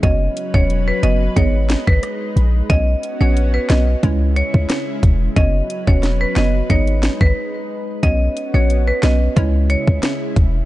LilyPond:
<<
  \new Staff \with { instrumentName = "Marimba" } { \time 4/4 \key b \major \tempo 4 = 90 dis''16 r8 cis''16 r16 b'16 dis''16 r16 cis''16 r8 b'16 r4 | dis''16 r8 cis''16 r16 b'16 dis''16 r8. cis''16 r4 r16 | dis''16 r8 cis''16 r16 b'16 dis''16 r16 cis''16 r8 b'16 r4 | dis''16 r8 cis''16 r16 b'16 dis''16 r8. cis''16 r4 r16 | }
  \new Staff \with { instrumentName = "Synth pluck" } { \time 4/4 \key b \major <b cis' fis' cis''>8. <b cis' fis' cis''>8. <b cis' fis' cis''>8 <b dis' gis' dis''>4.~ <b dis' gis' dis''>16 r16 | <b cis' fis' cis''>8. <b cis' fis' cis''>8. <b cis' fis' cis''>8 <gis cis' e' cis''>4.~ <gis cis' e' cis''>16 r16 | <b cis' fis' cis''>8. <b cis' fis' cis''>8. <b cis' fis' cis''>8 <b dis' gis' dis''>4 r4 | <b cis' fis' cis''>8. <b cis' fis' cis''>8. <b cis' fis' cis''>8 <gis cis' e' cis''>4.~ <gis cis' e' cis''>16 r16 | }
  \new Staff \with { instrumentName = "Analog synth pad" } { \time 4/4 \key b \major << { b'1 | fis'2 e'2 | b'1 | fis'2 e'2 | } \\ { <fis cis'>2 <gis dis'>2 | <b cis'>2 <cis gis>2 | <fis cis'>2 <gis dis'>2 | <b cis'>2 <cis gis>2 | } >> }
  \new Staff \with { instrumentName = "808-style bass" } { \clef bass \time 4/4 \key b \major fis,,8 r16 e,,8. fis,,8 gis,,8. gis,,16 r8 ais,,8 | b,,8 r16 ais,,8. b,,8 cis,8. cis,16 r8 e,,8 | fis,,8 r16 e,,8. fis,,8 gis,,8. gis,,16 r4 | b,,8 r16 ais,,8. b,,8 cis,8. cis,16 r8 e,,8 | }
  \new DrumStaff \with { instrumentName = "Drums" } \drummode { \time 4/4 <hh bd>8 hh16 bd16 hh8 hh8 <hh bd>8 <hh sn>16 bd16 <hh ss>8 hh8 | <hh bd>8 hh8 hh8 <hh sn>8 <hh bd>8 hh16 bd16 <hh ss sn>8 <hh bd>8 | <hh bd>8 hh16 bd16 <hh sn>8 <hh sn>8 <hh bd>16 hh16 <hh sn>16 bd16 r4 | <hh bd>8 hh8 hh8 <hh sn>8 <hh bd>8 hh16 bd16 <hh ss sn>8 <hh bd>8 | }
>>